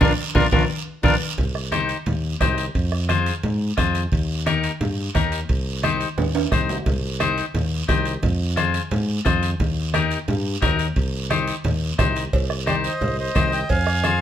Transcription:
0.01 fingered electric bass A#1, clean electric guitar D4 F4 A#4, accordion D4 F4 A#4, bombo low, high conga, high timbale, long guiro
0.35 fingered electric bass A#1, clean electric guitar D4 F4 A#4, accordion D4 F4 A#4, bombo low, high conga, high timbale, long guiro
0.52 fingered electric bass A#1, accordion D4 F4 A#4, clean electric guitar D4 F4 A#4, bombo low, high conga, high timbale, long guiro
1.03 fingered electric bass A#1, clean electric guitar D4 F4 A#4, accordion D4 F4 A#4, bombo low, high conga, high timbale, long guiro
1.38 fingered electric bass C2, bombo low, high conga, low conga, high timbale
1.55 bombo rim
1.72 clean electric guitar D#4 G4 C5, bombo rim, high conga, high timbale, short guiro
1.89 high timbale, short guiro
2.06 fingered electric bass D#2, high conga, low conga, high timbale, long guiro
2.40 fingered electric bass C2, clean electric guitar D#4 G4 C5, bombo low, bombo rim, high conga, low conga, high timbale, low timbale, short guiro
2.58 high timbale, short guiro
2.75 fingered electric bass F2, bombo low, high conga, high timbale, long guiro
2.92 bombo rim
3.09 clean electric guitar F4 G#4 C5, bombo rim, high conga, high timbale, short guiro
3.26 high timbale, short guiro
3.43 fingered electric bass G#2, high conga, low conga, high timbale, long guiro
3.77 fingered electric bass F2, clean electric guitar F4 G#4 C5, bombo low, bombo rim, high conga, high timbale, short guiro
3.95 high timbale, short guiro
4.12 fingered electric bass D#2, bombo low, high conga, high timbale, long guiro
4.46 clean electric guitar D#4 G4 A#4, bombo rim, high conga, high timbale, short guiro
4.63 high timbale, short guiro
4.81 fingered electric bass G2, high conga, low conga, high timbale, long guiro
5.15 fingered electric bass D#2, clean electric guitar D#4 G4 A#4, bombo low, bombo rim, high conga, high timbale, short guiro
5.32 high timbale, short guiro
5.49 fingered electric bass C2, bombo low, high conga, high timbale, long guiro
5.83 clean electric guitar D#4 G4 C5, bombo rim, high conga, high timbale, short guiro
6.01 high timbale, short guiro
6.18 fingered electric bass D#2, high conga, low conga, high timbale, long guiro
6.35 high timbale
6.52 fingered electric bass C2, clean electric guitar D#4 G4 C5, bombo low, bombo rim, high conga, low conga, short guiro
6.69 low timbale, short guiro
6.86 fingered electric bass C2, bombo low, high conga, low conga, high timbale, long guiro
7.20 clean electric guitar D#4 G4 C5, bombo rim, high conga, high timbale, short guiro
7.38 high timbale, short guiro
7.54 fingered electric bass D#2, high conga, low conga, high timbale, long guiro
7.88 fingered electric bass C2, clean electric guitar D#4 G4 C5, bombo low, bombo rim, high conga, high timbale, low timbale, short guiro
8.06 high timbale, short guiro
8.23 fingered electric bass F2, bombo low, high conga, low conga, high timbale, long guiro
8.56 clean electric guitar F4 G#4 C5, bombo rim, high conga, high timbale, short guiro
8.74 high timbale, short guiro
8.91 fingered electric bass G#2, high conga, low conga, high timbale, long guiro
9.25 fingered electric bass F2, clean electric guitar F4 G#4 C5, bombo low, bombo rim, high conga, high timbale, short guiro
9.43 high timbale, short guiro
9.60 fingered electric bass D#2, bombo low, high conga, low conga, high timbale, long guiro
9.94 clean electric guitar D#4 G4 A#4, bombo rim, high conga, high timbale, short guiro
10.11 high timbale, short guiro
10.28 fingered electric bass G2, high conga, low conga, high timbale, long guiro
10.62 fingered electric bass D#2, clean electric guitar D#4 G4 A#4, bombo low, bombo rim, high conga, low conga, high timbale, low timbale, short guiro
10.79 high timbale, short guiro
10.96 fingered electric bass C2, bombo low, high conga, high timbale, long guiro
11.30 clean electric guitar D#4 G4 C5, bombo rim, high conga, high timbale, short guiro
11.48 high timbale, short guiro
11.64 fingered electric bass D#2, high conga, low conga, high timbale, long guiro
11.98 fingered electric bass C2, clean electric guitar D#4 G4 C5, bombo low, bombo rim, high conga, low conga, high timbale, low timbale, short guiro
12.16 high timbale, short guiro
12.33 fingered electric bass C2, bombo low, cowbell, high conga, long guiro
12.50 bombo rim
12.66 clean electric guitar D#4 G4 C5, accordion G4 D5, bombo rim, high conga, short guiro
12.84 accordion C5 D#5, short guiro
13.01 fingered electric bass C2, cowbell, high conga, low conga, long guiro
13.19 accordion C5 D#5
13.35 fingered electric bass C2, clean electric guitar D#4 G4 C5, bombo low, bombo rim, high conga, low timbale, short guiro
13.52 accordion D#5 G5, short guiro
13.69 fingered electric bass F2, accordion F5 G#5, bombo low, cowbell, high conga, long guiro
13.87 bombo rim
14.04 clean electric guitar F4 G#4 C5, bombo rim, high conga, short guiro

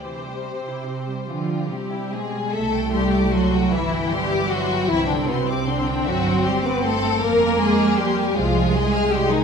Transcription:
Already playing: viola section G4
0.04 cello section C3, viola section E3, violin section C5
0.25 viola section G3
0.46 viola section C4
0.67 viola section E4
0.87 viola section C4
1.09 viola section G3
1.27 cello section D3 F3, viola section E3, french horn section F3, violin section F4
1.49 viola section G3
1.70 cello section C3 G3, french horn section G3, viola section C4, violin section G4
1.91 viola section E4
2.12 cello section B2 G#3, french horn section G#3, viola section C4, violin section G#4
2.34 viola section G3
2.53 double bass section C2, cello section A3, viola section A3, french horn section A3, violin section A4 E5
2.73 violin section G5
2.91 cello section G3, french horn section G3, violin section G4 C6
3.12 violin section D6
3.31 cello section F#3, french horn section F#3, violin section F#4 C6
3.52 violin section G5
3.71 double bass section G1, viola section E3, cello section E3, violin section E4 E5
3.77 french horn section E3
3.92 violin section G5
4.10 cello section G3, french horn section G3, violin section G4 C6
4.32 violin section D6
4.49 cello section F#3, violin section F#4 C6
4.53 french horn section F#3
4.72 violin section G5
4.88 double bass section C2, cello section E3, french horn section E3, viola section C4, violin section E4 E5
5.06 cello section D3, violin section D4 G5
5.13 french horn section D3
5.28 cello section B2, french horn section B2, violin section B3 C6
5.47 cello section C3, french horn section C3, violin section C4 D6
5.67 cello section D3, french horn section D3, violin section D4 C6
5.85 violin section G5
6.05 double bass section G1, cello section F#3, french horn section F#3, violin section F#4 E5
6.25 violin section G5
6.43 cello section G3, french horn section G3, violin section G4 C6
6.63 cello section B3, french horn section B3, violin section B4 D6
6.82 cello section A3, french horn section A3, violin section A4 C6
7.02 violin section G5
7.20 double bass section F2, viola section A#3, cello section A#3, french horn section A#3, violin section A#4 F5
7.39 violin section G#5
7.58 cello section G#3, french horn section G#3, violin section G#4 C6
7.78 violin section F6
7.97 cello section G3, violin section G4 C6
8.01 french horn section G3
8.16 violin section G#5
8.36 double bass section C2, cello section F3, french horn section F3, viola section G#3, violin section F4 F5
8.56 violin section G#5
8.73 cello section G#3, french horn section G#3, violin section G#4 C6
8.94 violin section F6
9.11 french horn section G3, cello section G3, violin section G4 C6
9.31 french horn section D#3, cello section D#3, violin section D#4 G#5

